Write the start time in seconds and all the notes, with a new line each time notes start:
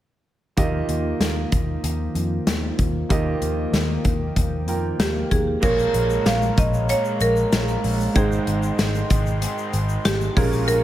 0.57 D#2 D#3 F3 A#3 F4 G4 D#5, kick, closed hi-hat
0.89 D#2, closed hi-hat
1.20 D#2, snare, closed hi-hat
1.52 D#2, kick, closed hi-hat
1.84 D#2, closed hi-hat
2.15 F2, closed hi-hat
2.47 D#2, snare, closed hi-hat
2.79 D#2, kick, closed hi-hat
3.09 D#2 D#3 A#3 F4 G4 D#5 G5, kick, closed hi-hat
3.42 D#2, closed hi-hat
3.73 D#2, snare, closed hi-hat
4.05 D#2, kick, closed hi-hat
4.36 D#2, kick, closed hi-hat
4.68 F2 A#3 F4 A#4 G5, closed hi-hat
4.99 D#2 G4, snare, closed hi-hat
5.31 D#2 G#4, kick, closed hi-hat
5.61 A#1 A#2 F3 G#3 A#3 F4 G#4 A#4 C#5 F5 A#5, kick, crash, shaker
5.66 A#3
5.79 shaker
5.94 A#1, closed hi-hat
6.10 shaker
6.26 A#1 F5, snare, closed hi-hat, shaker
6.42 shaker
6.58 A#1 D#5, kick, closed hi-hat, shaker
6.74 shaker
6.89 A#2 F3 A#3 C#5, closed hi-hat, shaker
7.05 shaker
7.21 A#1 A#4, closed hi-hat, shaker
7.36 shaker
7.52 A#1, snare, closed hi-hat, shaker
7.68 shaker
7.83 A#1 F3 A#3, open hi-hat
8.00 shaker
8.14 G#1 G#2 D#3 G#3 D#4 G#4 C5 D#5 G5 C6, kick, closed hi-hat, shaker
8.32 shaker
8.47 G#1, closed hi-hat
8.63 shaker
8.79 G#1, snare, closed hi-hat, shaker
8.95 shaker
9.10 G#1 D#3 G#3, kick, closed hi-hat, shaker
9.26 shaker
9.42 G#2 D#3 G#3, closed hi-hat, shaker
9.58 shaker
9.73 G#1, closed hi-hat, shaker
9.89 shaker
10.05 G#1 G4, snare, closed hi-hat, shaker
10.21 shaker
10.35 A#1 A#2 F3 G#3 A#3 C#4 F4 G#4 A#4 F5 G#5 C#6, kick, open hi-hat
10.53 shaker
10.67 A#2 F3 A#4, closed hi-hat, shaker
10.71 A#3